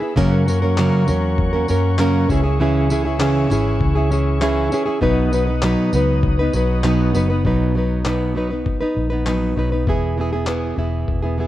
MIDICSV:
0, 0, Header, 1, 5, 480
1, 0, Start_track
1, 0, Tempo, 606673
1, 133, Time_signature, 4, 2, 24, 8
1, 9077, End_track
2, 0, Start_track
2, 0, Title_t, "Tonewheel organ"
2, 0, Program_c, 0, 16
2, 0, Note_on_c, 0, 68, 71
2, 0, Note_on_c, 0, 71, 58
2, 0, Note_on_c, 0, 76, 57
2, 0, Note_on_c, 0, 83, 68
2, 107, Note_off_c, 0, 68, 0
2, 111, Note_off_c, 0, 83, 0
2, 113, Note_off_c, 0, 76, 0
2, 115, Note_off_c, 0, 71, 0
2, 138, Note_on_c, 0, 78, 60
2, 142, Note_on_c, 0, 73, 58
2, 143, Note_on_c, 0, 85, 80
2, 144, Note_on_c, 0, 70, 64
2, 1797, Note_off_c, 0, 78, 0
2, 1800, Note_off_c, 0, 70, 0
2, 1821, Note_on_c, 0, 68, 72
2, 1821, Note_on_c, 0, 76, 68
2, 3942, Note_off_c, 0, 73, 0
2, 3942, Note_off_c, 0, 85, 0
2, 3952, Note_off_c, 0, 68, 0
2, 3952, Note_off_c, 0, 76, 0
2, 3978, Note_on_c, 0, 75, 55
2, 3980, Note_on_c, 0, 78, 64
2, 3980, Note_on_c, 0, 87, 65
2, 3981, Note_on_c, 0, 71, 69
2, 5873, Note_off_c, 0, 75, 0
2, 5875, Note_off_c, 0, 71, 0
2, 5875, Note_off_c, 0, 78, 0
2, 5875, Note_off_c, 0, 87, 0
2, 9077, End_track
3, 0, Start_track
3, 0, Title_t, "Nylon-string guitar"
3, 0, Program_c, 1, 24
3, 2, Note_on_c, 1, 68, 46
3, 14, Note_on_c, 1, 64, 46
3, 21, Note_on_c, 1, 59, 39
3, 124, Note_on_c, 1, 42, 85
3, 126, Note_on_c, 1, 49, 95
3, 127, Note_off_c, 1, 68, 0
3, 133, Note_off_c, 1, 59, 0
3, 133, Note_on_c, 1, 54, 81
3, 134, Note_off_c, 1, 64, 0
3, 136, Note_on_c, 1, 58, 100
3, 137, Note_on_c, 1, 61, 98
3, 138, Note_on_c, 1, 70, 104
3, 356, Note_off_c, 1, 54, 0
3, 366, Note_on_c, 1, 54, 67
3, 368, Note_off_c, 1, 42, 0
3, 369, Note_off_c, 1, 49, 0
3, 369, Note_off_c, 1, 58, 0
3, 375, Note_off_c, 1, 61, 0
3, 375, Note_off_c, 1, 70, 0
3, 379, Note_on_c, 1, 58, 58
3, 384, Note_on_c, 1, 61, 63
3, 390, Note_on_c, 1, 70, 68
3, 481, Note_off_c, 1, 70, 0
3, 489, Note_off_c, 1, 54, 0
3, 489, Note_off_c, 1, 61, 0
3, 491, Note_on_c, 1, 70, 58
3, 496, Note_off_c, 1, 58, 0
3, 499, Note_on_c, 1, 61, 57
3, 505, Note_on_c, 1, 58, 51
3, 509, Note_on_c, 1, 54, 48
3, 610, Note_on_c, 1, 42, 85
3, 612, Note_off_c, 1, 70, 0
3, 613, Note_off_c, 1, 54, 0
3, 613, Note_off_c, 1, 58, 0
3, 615, Note_off_c, 1, 61, 0
3, 619, Note_on_c, 1, 49, 82
3, 622, Note_on_c, 1, 54, 97
3, 623, Note_on_c, 1, 58, 93
3, 627, Note_on_c, 1, 70, 80
3, 628, Note_on_c, 1, 61, 86
3, 834, Note_off_c, 1, 54, 0
3, 842, Note_off_c, 1, 58, 0
3, 843, Note_on_c, 1, 54, 67
3, 851, Note_off_c, 1, 42, 0
3, 851, Note_off_c, 1, 61, 0
3, 851, Note_on_c, 1, 58, 74
3, 855, Note_off_c, 1, 49, 0
3, 855, Note_off_c, 1, 70, 0
3, 860, Note_on_c, 1, 61, 68
3, 864, Note_on_c, 1, 70, 67
3, 1200, Note_off_c, 1, 70, 0
3, 1207, Note_off_c, 1, 54, 0
3, 1209, Note_on_c, 1, 70, 66
3, 1211, Note_off_c, 1, 58, 0
3, 1212, Note_off_c, 1, 61, 0
3, 1222, Note_on_c, 1, 61, 62
3, 1231, Note_on_c, 1, 58, 58
3, 1234, Note_on_c, 1, 54, 40
3, 1315, Note_off_c, 1, 54, 0
3, 1324, Note_on_c, 1, 54, 55
3, 1326, Note_off_c, 1, 58, 0
3, 1330, Note_off_c, 1, 70, 0
3, 1331, Note_off_c, 1, 61, 0
3, 1335, Note_on_c, 1, 58, 75
3, 1340, Note_on_c, 1, 61, 64
3, 1351, Note_on_c, 1, 70, 71
3, 1563, Note_off_c, 1, 54, 0
3, 1568, Note_off_c, 1, 58, 0
3, 1568, Note_on_c, 1, 42, 90
3, 1570, Note_off_c, 1, 61, 0
3, 1571, Note_on_c, 1, 49, 82
3, 1573, Note_on_c, 1, 54, 75
3, 1578, Note_off_c, 1, 70, 0
3, 1578, Note_on_c, 1, 58, 84
3, 1580, Note_on_c, 1, 61, 86
3, 1587, Note_on_c, 1, 70, 87
3, 1806, Note_off_c, 1, 54, 0
3, 1809, Note_off_c, 1, 42, 0
3, 1809, Note_off_c, 1, 61, 0
3, 1809, Note_on_c, 1, 52, 66
3, 1811, Note_off_c, 1, 49, 0
3, 1814, Note_off_c, 1, 58, 0
3, 1818, Note_on_c, 1, 61, 63
3, 1819, Note_off_c, 1, 70, 0
3, 1828, Note_on_c, 1, 64, 67
3, 1832, Note_on_c, 1, 68, 68
3, 1917, Note_off_c, 1, 68, 0
3, 1926, Note_on_c, 1, 68, 58
3, 1930, Note_off_c, 1, 52, 0
3, 1932, Note_off_c, 1, 64, 0
3, 1935, Note_off_c, 1, 61, 0
3, 1942, Note_on_c, 1, 64, 43
3, 1952, Note_on_c, 1, 61, 40
3, 2048, Note_off_c, 1, 68, 0
3, 2053, Note_on_c, 1, 49, 87
3, 2055, Note_off_c, 1, 61, 0
3, 2056, Note_off_c, 1, 64, 0
3, 2060, Note_on_c, 1, 52, 90
3, 2065, Note_on_c, 1, 61, 98
3, 2067, Note_on_c, 1, 64, 97
3, 2071, Note_on_c, 1, 68, 84
3, 2283, Note_off_c, 1, 52, 0
3, 2292, Note_off_c, 1, 49, 0
3, 2292, Note_off_c, 1, 61, 0
3, 2292, Note_on_c, 1, 52, 67
3, 2299, Note_off_c, 1, 64, 0
3, 2300, Note_off_c, 1, 68, 0
3, 2301, Note_on_c, 1, 61, 69
3, 2307, Note_on_c, 1, 64, 78
3, 2314, Note_on_c, 1, 68, 78
3, 2404, Note_off_c, 1, 68, 0
3, 2411, Note_off_c, 1, 52, 0
3, 2413, Note_on_c, 1, 68, 63
3, 2415, Note_off_c, 1, 64, 0
3, 2416, Note_off_c, 1, 61, 0
3, 2424, Note_on_c, 1, 64, 56
3, 2434, Note_on_c, 1, 61, 51
3, 2523, Note_off_c, 1, 61, 0
3, 2524, Note_on_c, 1, 49, 92
3, 2527, Note_off_c, 1, 64, 0
3, 2528, Note_on_c, 1, 52, 88
3, 2531, Note_off_c, 1, 68, 0
3, 2532, Note_on_c, 1, 61, 82
3, 2536, Note_on_c, 1, 64, 82
3, 2546, Note_on_c, 1, 68, 89
3, 2757, Note_off_c, 1, 52, 0
3, 2762, Note_off_c, 1, 61, 0
3, 2767, Note_off_c, 1, 49, 0
3, 2767, Note_on_c, 1, 52, 77
3, 2772, Note_on_c, 1, 61, 70
3, 2773, Note_off_c, 1, 64, 0
3, 2778, Note_off_c, 1, 68, 0
3, 2781, Note_on_c, 1, 64, 69
3, 2789, Note_on_c, 1, 68, 77
3, 3118, Note_off_c, 1, 68, 0
3, 3128, Note_off_c, 1, 52, 0
3, 3128, Note_on_c, 1, 68, 61
3, 3130, Note_off_c, 1, 61, 0
3, 3133, Note_off_c, 1, 64, 0
3, 3142, Note_on_c, 1, 64, 57
3, 3152, Note_on_c, 1, 61, 43
3, 3243, Note_off_c, 1, 61, 0
3, 3246, Note_on_c, 1, 52, 60
3, 3249, Note_off_c, 1, 68, 0
3, 3251, Note_off_c, 1, 64, 0
3, 3252, Note_on_c, 1, 61, 68
3, 3261, Note_on_c, 1, 64, 67
3, 3269, Note_on_c, 1, 68, 70
3, 3479, Note_off_c, 1, 52, 0
3, 3481, Note_on_c, 1, 49, 86
3, 3482, Note_off_c, 1, 61, 0
3, 3488, Note_on_c, 1, 52, 90
3, 3489, Note_off_c, 1, 64, 0
3, 3491, Note_on_c, 1, 61, 94
3, 3493, Note_off_c, 1, 68, 0
3, 3499, Note_on_c, 1, 64, 101
3, 3503, Note_on_c, 1, 68, 91
3, 3718, Note_off_c, 1, 52, 0
3, 3725, Note_off_c, 1, 49, 0
3, 3727, Note_off_c, 1, 61, 0
3, 3727, Note_on_c, 1, 52, 63
3, 3734, Note_off_c, 1, 64, 0
3, 3736, Note_off_c, 1, 68, 0
3, 3736, Note_on_c, 1, 61, 63
3, 3743, Note_on_c, 1, 64, 60
3, 3751, Note_on_c, 1, 68, 67
3, 3832, Note_off_c, 1, 68, 0
3, 3842, Note_on_c, 1, 68, 54
3, 3846, Note_off_c, 1, 64, 0
3, 3848, Note_off_c, 1, 52, 0
3, 3852, Note_off_c, 1, 61, 0
3, 3855, Note_on_c, 1, 64, 51
3, 3863, Note_on_c, 1, 61, 43
3, 3963, Note_on_c, 1, 47, 86
3, 3965, Note_off_c, 1, 61, 0
3, 3965, Note_off_c, 1, 68, 0
3, 3965, Note_on_c, 1, 54, 92
3, 3969, Note_on_c, 1, 59, 84
3, 3972, Note_off_c, 1, 64, 0
3, 3975, Note_on_c, 1, 63, 97
3, 3978, Note_on_c, 1, 71, 88
3, 4194, Note_off_c, 1, 54, 0
3, 4202, Note_off_c, 1, 59, 0
3, 4204, Note_on_c, 1, 54, 66
3, 4206, Note_off_c, 1, 47, 0
3, 4212, Note_off_c, 1, 63, 0
3, 4212, Note_on_c, 1, 59, 66
3, 4213, Note_off_c, 1, 71, 0
3, 4223, Note_on_c, 1, 63, 72
3, 4228, Note_on_c, 1, 71, 70
3, 4318, Note_off_c, 1, 71, 0
3, 4326, Note_off_c, 1, 54, 0
3, 4327, Note_on_c, 1, 71, 58
3, 4330, Note_off_c, 1, 59, 0
3, 4330, Note_off_c, 1, 63, 0
3, 4340, Note_on_c, 1, 63, 46
3, 4351, Note_on_c, 1, 59, 50
3, 4448, Note_off_c, 1, 71, 0
3, 4454, Note_off_c, 1, 63, 0
3, 4456, Note_off_c, 1, 59, 0
3, 4456, Note_on_c, 1, 47, 77
3, 4456, Note_on_c, 1, 54, 79
3, 4465, Note_on_c, 1, 59, 85
3, 4465, Note_on_c, 1, 63, 97
3, 4469, Note_on_c, 1, 71, 98
3, 4681, Note_off_c, 1, 54, 0
3, 4691, Note_off_c, 1, 59, 0
3, 4691, Note_on_c, 1, 54, 65
3, 4692, Note_off_c, 1, 47, 0
3, 4697, Note_off_c, 1, 63, 0
3, 4699, Note_off_c, 1, 71, 0
3, 4701, Note_on_c, 1, 59, 68
3, 4709, Note_on_c, 1, 63, 63
3, 4715, Note_on_c, 1, 71, 72
3, 5048, Note_off_c, 1, 71, 0
3, 5049, Note_off_c, 1, 54, 0
3, 5054, Note_off_c, 1, 59, 0
3, 5057, Note_on_c, 1, 71, 61
3, 5058, Note_off_c, 1, 63, 0
3, 5070, Note_on_c, 1, 63, 52
3, 5083, Note_on_c, 1, 59, 55
3, 5169, Note_off_c, 1, 59, 0
3, 5170, Note_on_c, 1, 54, 65
3, 5173, Note_off_c, 1, 71, 0
3, 5179, Note_off_c, 1, 63, 0
3, 5179, Note_on_c, 1, 59, 61
3, 5190, Note_on_c, 1, 63, 63
3, 5194, Note_on_c, 1, 71, 57
3, 5405, Note_off_c, 1, 54, 0
3, 5407, Note_off_c, 1, 59, 0
3, 5408, Note_on_c, 1, 47, 78
3, 5409, Note_off_c, 1, 63, 0
3, 5415, Note_on_c, 1, 54, 83
3, 5416, Note_off_c, 1, 71, 0
3, 5417, Note_on_c, 1, 59, 83
3, 5418, Note_on_c, 1, 63, 79
3, 5426, Note_on_c, 1, 71, 93
3, 5637, Note_off_c, 1, 54, 0
3, 5644, Note_off_c, 1, 59, 0
3, 5646, Note_on_c, 1, 54, 58
3, 5648, Note_off_c, 1, 47, 0
3, 5653, Note_off_c, 1, 63, 0
3, 5654, Note_on_c, 1, 59, 70
3, 5657, Note_off_c, 1, 71, 0
3, 5661, Note_on_c, 1, 63, 67
3, 5670, Note_on_c, 1, 71, 63
3, 5765, Note_off_c, 1, 71, 0
3, 5767, Note_off_c, 1, 54, 0
3, 5771, Note_off_c, 1, 59, 0
3, 5774, Note_on_c, 1, 71, 51
3, 5775, Note_off_c, 1, 63, 0
3, 5784, Note_on_c, 1, 63, 45
3, 5800, Note_on_c, 1, 59, 43
3, 5891, Note_off_c, 1, 71, 0
3, 5892, Note_on_c, 1, 47, 76
3, 5893, Note_off_c, 1, 59, 0
3, 5896, Note_off_c, 1, 63, 0
3, 5898, Note_on_c, 1, 54, 65
3, 5903, Note_on_c, 1, 59, 79
3, 5905, Note_on_c, 1, 63, 77
3, 5909, Note_on_c, 1, 71, 85
3, 6122, Note_off_c, 1, 54, 0
3, 6130, Note_off_c, 1, 47, 0
3, 6131, Note_off_c, 1, 59, 0
3, 6132, Note_on_c, 1, 54, 59
3, 6136, Note_off_c, 1, 63, 0
3, 6139, Note_off_c, 1, 71, 0
3, 6141, Note_on_c, 1, 59, 56
3, 6150, Note_on_c, 1, 63, 57
3, 6156, Note_on_c, 1, 71, 58
3, 6360, Note_off_c, 1, 54, 0
3, 6365, Note_on_c, 1, 47, 62
3, 6369, Note_off_c, 1, 59, 0
3, 6370, Note_on_c, 1, 54, 73
3, 6371, Note_off_c, 1, 63, 0
3, 6377, Note_off_c, 1, 71, 0
3, 6379, Note_on_c, 1, 59, 74
3, 6380, Note_on_c, 1, 63, 69
3, 6386, Note_on_c, 1, 71, 76
3, 6597, Note_off_c, 1, 54, 0
3, 6606, Note_off_c, 1, 59, 0
3, 6607, Note_off_c, 1, 47, 0
3, 6607, Note_on_c, 1, 54, 59
3, 6615, Note_off_c, 1, 63, 0
3, 6616, Note_on_c, 1, 59, 57
3, 6617, Note_off_c, 1, 71, 0
3, 6623, Note_on_c, 1, 63, 68
3, 6627, Note_on_c, 1, 71, 64
3, 6719, Note_off_c, 1, 71, 0
3, 6728, Note_off_c, 1, 54, 0
3, 6728, Note_on_c, 1, 71, 45
3, 6732, Note_off_c, 1, 59, 0
3, 6736, Note_off_c, 1, 63, 0
3, 6745, Note_on_c, 1, 63, 42
3, 6752, Note_on_c, 1, 59, 40
3, 6958, Note_off_c, 1, 71, 0
3, 6967, Note_on_c, 1, 71, 53
3, 6969, Note_off_c, 1, 63, 0
3, 6976, Note_off_c, 1, 59, 0
3, 6979, Note_on_c, 1, 63, 57
3, 6986, Note_on_c, 1, 59, 46
3, 7190, Note_off_c, 1, 71, 0
3, 7200, Note_on_c, 1, 71, 59
3, 7205, Note_off_c, 1, 63, 0
3, 7214, Note_off_c, 1, 59, 0
3, 7214, Note_on_c, 1, 63, 50
3, 7224, Note_on_c, 1, 59, 46
3, 7324, Note_off_c, 1, 59, 0
3, 7324, Note_off_c, 1, 71, 0
3, 7329, Note_on_c, 1, 54, 69
3, 7332, Note_off_c, 1, 63, 0
3, 7334, Note_on_c, 1, 59, 74
3, 7339, Note_on_c, 1, 71, 71
3, 7341, Note_on_c, 1, 63, 80
3, 7554, Note_off_c, 1, 54, 0
3, 7560, Note_off_c, 1, 59, 0
3, 7563, Note_on_c, 1, 54, 53
3, 7566, Note_off_c, 1, 63, 0
3, 7569, Note_on_c, 1, 59, 52
3, 7575, Note_off_c, 1, 71, 0
3, 7576, Note_on_c, 1, 63, 58
3, 7586, Note_on_c, 1, 71, 62
3, 7682, Note_off_c, 1, 71, 0
3, 7687, Note_off_c, 1, 54, 0
3, 7688, Note_off_c, 1, 63, 0
3, 7690, Note_off_c, 1, 59, 0
3, 7691, Note_on_c, 1, 71, 44
3, 7697, Note_on_c, 1, 63, 36
3, 7709, Note_on_c, 1, 59, 36
3, 7809, Note_off_c, 1, 59, 0
3, 7809, Note_on_c, 1, 52, 64
3, 7811, Note_off_c, 1, 71, 0
3, 7814, Note_off_c, 1, 63, 0
3, 7818, Note_on_c, 1, 59, 80
3, 7822, Note_on_c, 1, 64, 75
3, 7829, Note_on_c, 1, 68, 85
3, 8043, Note_off_c, 1, 52, 0
3, 8052, Note_on_c, 1, 52, 61
3, 8054, Note_off_c, 1, 59, 0
3, 8056, Note_off_c, 1, 64, 0
3, 8060, Note_off_c, 1, 68, 0
3, 8063, Note_on_c, 1, 59, 55
3, 8071, Note_on_c, 1, 64, 67
3, 8077, Note_on_c, 1, 68, 67
3, 8161, Note_off_c, 1, 68, 0
3, 8170, Note_on_c, 1, 68, 59
3, 8171, Note_off_c, 1, 52, 0
3, 8171, Note_off_c, 1, 64, 0
3, 8177, Note_off_c, 1, 59, 0
3, 8180, Note_on_c, 1, 64, 46
3, 8191, Note_on_c, 1, 59, 39
3, 8279, Note_off_c, 1, 59, 0
3, 8282, Note_on_c, 1, 52, 68
3, 8284, Note_off_c, 1, 64, 0
3, 8286, Note_off_c, 1, 68, 0
3, 8288, Note_on_c, 1, 59, 78
3, 8293, Note_on_c, 1, 64, 78
3, 8296, Note_on_c, 1, 68, 80
3, 8506, Note_off_c, 1, 52, 0
3, 8515, Note_on_c, 1, 52, 58
3, 8520, Note_off_c, 1, 59, 0
3, 8524, Note_off_c, 1, 64, 0
3, 8529, Note_on_c, 1, 59, 61
3, 8533, Note_off_c, 1, 68, 0
3, 8534, Note_on_c, 1, 64, 67
3, 8543, Note_on_c, 1, 68, 58
3, 8871, Note_off_c, 1, 68, 0
3, 8881, Note_off_c, 1, 64, 0
3, 8881, Note_on_c, 1, 68, 52
3, 8884, Note_off_c, 1, 52, 0
3, 8891, Note_off_c, 1, 59, 0
3, 8891, Note_on_c, 1, 64, 49
3, 8905, Note_on_c, 1, 59, 49
3, 9001, Note_on_c, 1, 52, 59
3, 9003, Note_off_c, 1, 59, 0
3, 9006, Note_off_c, 1, 68, 0
3, 9011, Note_off_c, 1, 64, 0
3, 9013, Note_on_c, 1, 59, 50
3, 9021, Note_on_c, 1, 64, 54
3, 9025, Note_on_c, 1, 68, 56
3, 9077, Note_off_c, 1, 52, 0
3, 9077, Note_off_c, 1, 59, 0
3, 9077, Note_off_c, 1, 64, 0
3, 9077, Note_off_c, 1, 68, 0
3, 9077, End_track
4, 0, Start_track
4, 0, Title_t, "Fingered electric bass"
4, 0, Program_c, 2, 33
4, 139, Note_on_c, 2, 42, 100
4, 705, Note_off_c, 2, 42, 0
4, 861, Note_on_c, 2, 40, 89
4, 1304, Note_off_c, 2, 40, 0
4, 1344, Note_on_c, 2, 42, 88
4, 1786, Note_off_c, 2, 42, 0
4, 1815, Note_on_c, 2, 37, 90
4, 2740, Note_off_c, 2, 37, 0
4, 2773, Note_on_c, 2, 32, 78
4, 2992, Note_off_c, 2, 32, 0
4, 3012, Note_on_c, 2, 37, 108
4, 3699, Note_off_c, 2, 37, 0
4, 3975, Note_on_c, 2, 35, 107
4, 4542, Note_off_c, 2, 35, 0
4, 4690, Note_on_c, 2, 37, 85
4, 5137, Note_off_c, 2, 37, 0
4, 5172, Note_on_c, 2, 35, 88
4, 5618, Note_off_c, 2, 35, 0
4, 5654, Note_on_c, 2, 30, 91
4, 5872, Note_off_c, 2, 30, 0
4, 5894, Note_on_c, 2, 35, 93
4, 6940, Note_off_c, 2, 35, 0
4, 7094, Note_on_c, 2, 34, 86
4, 7540, Note_off_c, 2, 34, 0
4, 7570, Note_on_c, 2, 35, 78
4, 7791, Note_off_c, 2, 35, 0
4, 7810, Note_on_c, 2, 28, 91
4, 8499, Note_off_c, 2, 28, 0
4, 8525, Note_on_c, 2, 28, 78
4, 8749, Note_off_c, 2, 28, 0
4, 8769, Note_on_c, 2, 28, 91
4, 9077, Note_off_c, 2, 28, 0
4, 9077, End_track
5, 0, Start_track
5, 0, Title_t, "Drums"
5, 139, Note_on_c, 9, 36, 97
5, 218, Note_off_c, 9, 36, 0
5, 379, Note_on_c, 9, 54, 66
5, 458, Note_off_c, 9, 54, 0
5, 614, Note_on_c, 9, 39, 94
5, 693, Note_off_c, 9, 39, 0
5, 853, Note_on_c, 9, 54, 64
5, 932, Note_off_c, 9, 54, 0
5, 1093, Note_on_c, 9, 36, 91
5, 1172, Note_off_c, 9, 36, 0
5, 1331, Note_on_c, 9, 54, 59
5, 1410, Note_off_c, 9, 54, 0
5, 1570, Note_on_c, 9, 39, 112
5, 1649, Note_off_c, 9, 39, 0
5, 1816, Note_on_c, 9, 36, 91
5, 1820, Note_on_c, 9, 54, 59
5, 1895, Note_off_c, 9, 36, 0
5, 1899, Note_off_c, 9, 54, 0
5, 2296, Note_on_c, 9, 54, 68
5, 2375, Note_off_c, 9, 54, 0
5, 2532, Note_on_c, 9, 39, 116
5, 2612, Note_off_c, 9, 39, 0
5, 2780, Note_on_c, 9, 54, 62
5, 2859, Note_off_c, 9, 54, 0
5, 3012, Note_on_c, 9, 36, 96
5, 3091, Note_off_c, 9, 36, 0
5, 3256, Note_on_c, 9, 54, 62
5, 3335, Note_off_c, 9, 54, 0
5, 3494, Note_on_c, 9, 39, 112
5, 3573, Note_off_c, 9, 39, 0
5, 3735, Note_on_c, 9, 54, 59
5, 3814, Note_off_c, 9, 54, 0
5, 3972, Note_on_c, 9, 36, 111
5, 4051, Note_off_c, 9, 36, 0
5, 4215, Note_on_c, 9, 54, 58
5, 4294, Note_off_c, 9, 54, 0
5, 4449, Note_on_c, 9, 39, 105
5, 4528, Note_off_c, 9, 39, 0
5, 4690, Note_on_c, 9, 54, 72
5, 4770, Note_off_c, 9, 54, 0
5, 4930, Note_on_c, 9, 36, 111
5, 5009, Note_off_c, 9, 36, 0
5, 5169, Note_on_c, 9, 54, 63
5, 5248, Note_off_c, 9, 54, 0
5, 5410, Note_on_c, 9, 39, 115
5, 5489, Note_off_c, 9, 39, 0
5, 5653, Note_on_c, 9, 54, 67
5, 5733, Note_off_c, 9, 54, 0
5, 5893, Note_on_c, 9, 36, 90
5, 5972, Note_off_c, 9, 36, 0
5, 6371, Note_on_c, 9, 39, 95
5, 6450, Note_off_c, 9, 39, 0
5, 6851, Note_on_c, 9, 36, 89
5, 6931, Note_off_c, 9, 36, 0
5, 7329, Note_on_c, 9, 39, 105
5, 7409, Note_off_c, 9, 39, 0
5, 7810, Note_on_c, 9, 36, 96
5, 7889, Note_off_c, 9, 36, 0
5, 8281, Note_on_c, 9, 39, 91
5, 8360, Note_off_c, 9, 39, 0
5, 8767, Note_on_c, 9, 36, 77
5, 8846, Note_off_c, 9, 36, 0
5, 9077, End_track
0, 0, End_of_file